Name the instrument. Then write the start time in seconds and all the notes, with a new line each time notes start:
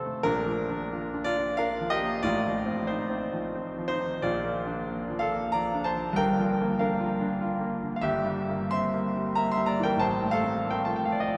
grand piano
Already playing: F2 C3 A3 C4 F4 A4
0.06 A3
0.23 A#1 A#2 D4 A#4
0.46 F3
0.70 D4
0.92 F4
1.14 D4
1.24 F4 D5
1.37 F4
1.57 D4 A#4 F5
1.81 F3
1.90 G4 D#5
2.01 A#3
2.23 A1 A2 F4 D5
2.46 F3
2.66 C4
2.87 D#4 C5
3.10 C4
3.33 F3
3.56 C4
3.78 F3
3.88 D#4 C5
4.01 D#3
4.22 A#1 A#2 F4 D5
4.44 A#3
4.66 D4
4.88 A#3
5.10 F3
5.19 A4 F5
5.32 A#3
5.52 F3 D5 A#5
5.75 D4
5.84 C5 A5
5.95 F3
6.13 G1 G2 G5
6.17 A#4
6.38 F3
6.61 A#3
6.79 D4 A#4 F5
7.00 F4
7.21 D4
7.41 F4
7.61 A#3
7.83 D3
7.96 F5
8.01 G1 G2 G4 E5
8.25 G3
8.49 A#3
8.71 C4 E5 C6
8.94 A#3
9.16 G3
9.35 A#3 E5 A#5
9.52 E5 C6
9.57 G3
9.66 D5 A#5
9.80 E3 G5
9.85 A#4
9.96 A2 A5
10.00 A1 C5
10.21 A3
10.31 A4 F5
10.43 C4
10.65 A3
10.70 A#4 G5
10.85 F3 A5
10.96 G5
11.05 A3 F5
11.12 D5
11.20 D#5
11.28 F3 D5